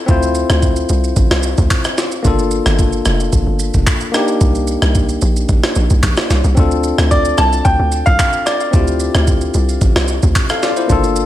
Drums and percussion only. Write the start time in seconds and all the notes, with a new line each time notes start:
0.09 kick, shaker
0.23 shaker
0.35 shaker
0.50 cross-stick, shaker
0.63 kick, shaker
0.76 shaker
0.89 shaker
1.04 shaker
1.16 kick, shaker
1.31 cross-stick, snare
1.43 shaker
1.58 kick, shaker
1.71 kick, clap, shaker
1.85 cross-stick, shaker
1.98 snare, shaker
2.12 shaker
2.25 kick, shaker
2.39 shaker
2.51 shaker
2.66 cross-stick, shaker
2.79 kick, shaker
2.93 shaker
3.06 cross-stick, shaker
3.20 shaker
3.33 kick, shaker
3.59 shaker
3.74 kick, shaker
3.87 kick, clap, shaker
4.01 shaker
4.14 cross-stick, shaker
4.28 shaker
4.41 kick, shaker
4.55 shaker
4.68 shaker
4.82 cross-stick, shaker
4.95 kick, shaker
5.09 shaker
5.22 shaker
5.37 shaker
5.49 kick, shaker
5.63 cross-stick, snare
5.76 shaker
5.90 kick, shaker
6.03 kick, clap, shaker
6.17 cross-stick, snare, shaker
6.30 snare, shaker
6.44 shaker
6.57 kick, shaker
6.72 shaker
6.84 shaker
6.98 cross-stick, shaker
7.11 kick, shaker
7.25 shaker
7.38 cross-stick, shaker
7.53 shaker
7.65 kick, shaker
7.92 shaker
8.06 kick, shaker
8.19 kick, clap, shaker
8.33 shaker
8.47 cross-stick, shaker
8.61 shaker
8.73 kick, shaker
8.88 shaker
9.00 shaker
9.15 cross-stick, shaker
9.27 kick, shaker
9.41 shaker
9.54 shaker
9.69 shaker
9.81 kick, shaker
9.96 cross-stick, snare
10.08 shaker
10.23 kick, shaker
10.35 kick, clap, shaker
10.49 cross-stick, shaker
10.63 snare, shaker
10.77 shaker
10.90 kick, shaker
11.04 shaker
11.16 shaker